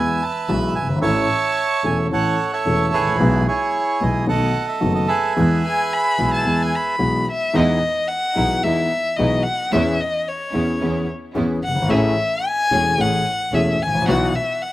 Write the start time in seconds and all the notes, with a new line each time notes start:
Already playing: E2 E3 G#3 B3 G#4 B4 E5 G#5
0.23 A5
0.48 B1 B2 E3 G#3 B3 G#4 B5
0.75 G1 G#5
0.82 F#1
0.90 G1
0.96 G#1
1.01 A1 A2 E3 A3 C#4 A4 C#5 E5 A5
1.84 E1 E2 E3 A3 C#4 A4 G#5
2.10 A1 A2 E3 A3 C#4 A4 C#5 F#5
2.53 A4 C#5 E5
2.66 E1 E2 E3 A3 C#4 A4
2.93 A1 E4 G#4 B4
2.99 G#1
3.07 A1
3.15 A#1
3.20 B1 B2 E3 G#3 B3 G#4
3.48 E4 G#4 C#5
4.01 B1 B2 E3 G#3 B3 G#4 D#5
4.27 B1 B2 D#3 A3 B3 F#4 A4 D#5 F#5
4.68 E5
4.81 F#1 F#2 D#3 A3 B3 F#4
4.95 D#5
5.08 G#4 B4 E5
5.36 E2 E3 G#3 B3 G#4
5.66 G#5
5.93 B5
6.18 B1 B2 E3 G#3 B3 G#4
6.34 A5
6.45 E2 E3 G#3 B3 G#4
6.62 G#5
6.75 B5
6.99 B1 B2 E3 G#3 B3 G#4
7.31 E5
7.53 E2 E3 G#3 B3 D#4 E4 G#4 D#5
8.08 F#5
8.36 B1 B2 E3 G#3 B3 D#4 E4 G#4
8.63 E2 E3 G#3 B3 D#4 E4 G#4 E5
9.16 B1 B2 E3 G#3 B3 D#4 E4 G#4 D#5
9.43 F#5
9.71 E2 E3 B3 C#4 E4 G#4 E5
10.00 D#5
10.28 C#5
10.53 E2 E3 B3 C#4 E4 G#4
10.79 E2 E3 B3 C#4 E4 G#4
11.34 E2 E3 B3 C#4 E4 G#4
11.63 G1 F#5
11.68 F#1
11.76 G1
11.82 G#1
11.89 A1 A2 E3 A3 C#4 G#4 E5
12.46 G#5
12.71 E1 E2 E3 A3 C#4 G#4
12.97 A1 A2 E3 A3 C#4 G#4 F#5
13.51 E1 E2 E3 A3 C#4 G#4 E5
13.79 A1 G#5
13.87 G#1
13.95 A1
14.01 A#1 B3 E4
14.05 B1 B2 E3 F#3 B3 F#4 F#5
14.35 E5
14.62 F#5